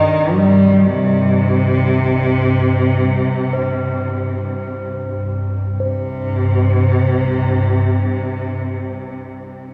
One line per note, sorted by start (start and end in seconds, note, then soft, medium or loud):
0.00 5.82 C2 medium
0.00 5.83 G2 medium
0.00 0.35 D#3 medium
0.34 0.87 G3 medium
0.86 4.08 C3 medium
3.53 5.79 C5 soft
5.80 9.14 C2 medium
5.80 9.14 G2 medium
5.80 9.10 C5 soft
5.85 9.15 C3 medium